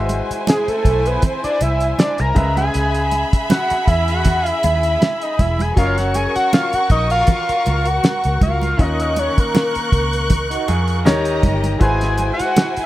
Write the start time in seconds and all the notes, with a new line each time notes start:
Already playing: G#1 G#3 E4 F#4 B4 C5 E5 G#5
0.09 closed hi-hat, muted conga
0.31 muted fingered electric bass stroke, closed hi-hat
0.47 G#4, snare, closed hi-hat, high conga
0.68 A4, muted fingered electric bass stroke, closed hi-hat
0.85 B1, kick, closed hi-hat, muted conga
1.06 B4, closed hi-hat
1.22 C5, kick, closed hi-hat, low conga
1.44 D5, muted fingered electric bass stroke, closed hi-hat
1.61 C2 E5, closed hi-hat, muted conga
1.80 closed hi-hat
1.99 D5, snare, closed hi-hat, high conga
2.18 C2 A#5, closed hi-hat
2.35 C#2 C#3 G#3 G#4 B4 E5 B5, kick, closed hi-hat, high conga
2.57 G#5, closed hi-hat, high conga
2.74 C#2, closed hi-hat
2.94 closed hi-hat
3.11 closed hi-hat, muted conga
3.33 muted fingered electric bass stroke, kick, closed hi-hat
3.50 F#5, snare, closed hi-hat, high conga
3.70 muted fingered electric bass stroke, closed hi-hat
3.88 E2 E5, kick, closed hi-hat, muted conga
4.08 F#5, closed hi-hat
4.25 kick, closed hi-hat, low conga
4.46 E5, closed hi-hat
4.63 D#2 E5, closed hi-hat, muted conga
4.83 closed hi-hat
5.02 snare, closed hi-hat, high conga
5.22 D#5, closed hi-hat
5.39 E1 E5, kick, closed hi-hat, high conga
5.59 G#5, closed hi-hat, high conga
5.76 F#1 F#3 C#4 F#4 A#4 D#5 F5 C#6, kick, closed hi-hat
5.85 C#5
5.98 F#5, snare, closed hi-hat
6.14 G#5, closed hi-hat, muted conga
6.36 F#5, muted fingered electric bass stroke, closed hi-hat
6.53 F5, snare, closed hi-hat, high conga
6.73 F#5, muted fingered electric bass stroke, closed hi-hat
6.90 A#1 D#5, kick, closed hi-hat, muted conga
7.10 F5, closed hi-hat
7.27 kick, closed hi-hat, low conga
7.49 muted fingered electric bass stroke, closed hi-hat
7.66 C#2, closed hi-hat, muted conga
7.85 F#5, closed hi-hat
8.04 snare, closed hi-hat, high conga
8.24 C#2, closed hi-hat
8.41 C#2 F5, kick, closed hi-hat, high conga
8.62 closed hi-hat, high conga
8.77 D#2 D#3 C#4 F4 A#4 D#5 C#6 F#6, kick, closed hi-hat
8.85 D#5
9.00 D#5, closed hi-hat
9.16 C#5, closed hi-hat, muted conga
9.38 A#4, muted fingered electric bass stroke, kick, closed hi-hat
9.55 snare, closed hi-hat, high conga
9.75 muted fingered electric bass stroke, closed hi-hat
9.92 C#2, kick, closed hi-hat
10.13 closed hi-hat
10.30 kick, closed hi-hat, low conga
10.50 D#4 F#4, closed hi-hat
10.68 F2 F4 G#4, closed hi-hat, muted conga
10.88 closed hi-hat
11.05 D#2 D#3 D#4 G4 A#4 C#5 D#5 A#5, snare, closed hi-hat, high conga
11.25 D#4 G4, closed hi-hat
11.43 G1, kick, closed hi-hat, high conga
11.64 closed hi-hat, high conga
11.79 G#1 G#3 E4 F#4 B4 C5 G#5, kick, closed hi-hat
12.01 snare, closed hi-hat
12.18 closed hi-hat, muted conga
12.33 F#5
12.39 muted fingered electric bass stroke, closed hi-hat
12.56 snare, closed hi-hat, high conga
12.77 muted fingered electric bass stroke, closed hi-hat